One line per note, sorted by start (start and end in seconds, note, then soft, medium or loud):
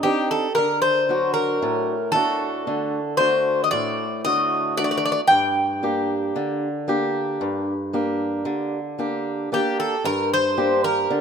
0.03 0.46 C4 soft
0.03 0.46 D4 soft
0.03 0.46 D#4 soft
0.03 0.30 G4 medium
0.31 0.54 A4 medium
0.55 1.59 D3 medium
0.55 0.81 A#4 medium
0.82 1.31 C5 medium
1.09 1.93 F#3 soft
1.09 1.94 D4 soft
1.09 1.94 F#4 soft
1.34 2.09 A#4 medium
1.62 2.64 A2 medium
2.12 2.99 A3 soft
2.12 2.99 D4 soft
2.12 2.99 F#4 medium
2.12 3.14 A4 medium
2.67 3.69 D3 medium
3.17 4.04 A3 soft
3.17 4.04 D4 soft
3.17 4.04 F#4 medium
3.17 3.63 C5 medium
3.64 3.71 D#5 medium
3.71 4.75 A2 medium
3.71 4.20 D5 medium
4.25 5.10 D3 soft
4.25 4.77 A3 soft
4.25 4.77 F#4 medium
4.25 4.77 D#5 medium
4.77 5.20 A3 soft
4.77 5.20 D4 soft
4.77 5.20 F#4 soft
4.77 4.83 D5 medium
4.84 4.90 D5 medium
4.91 4.96 D5 medium
4.98 5.04 D5 medium
5.05 5.11 D5 medium
5.12 5.20 D5 medium
5.27 6.32 G2 medium
5.27 8.93 G5 medium
5.83 6.67 A#3 soft
5.83 6.67 D4 soft
5.83 6.68 G4 soft
6.36 7.38 D3 medium
6.88 7.72 A#3 soft
6.88 7.72 D4 soft
6.88 7.73 G4 medium
7.41 8.43 G2 medium
7.93 8.78 A#3 soft
7.93 8.78 D4 soft
7.93 8.78 G4 soft
8.45 9.48 D3 medium
8.99 9.51 A#3 soft
8.99 9.51 D4 soft
8.99 9.51 G4 soft
9.52 9.94 A#3 soft
9.52 9.94 D4 soft
9.52 9.94 G4 soft
9.52 9.77 G4 medium
9.80 10.05 A4 medium
10.04 11.06 G2 medium
10.04 10.29 A#4 medium
10.34 10.81 C5 medium
10.57 11.21 A#3 soft
10.57 11.21 D4 soft
10.57 11.21 G4 soft
10.84 11.21 A#4 medium
11.10 11.21 D3 medium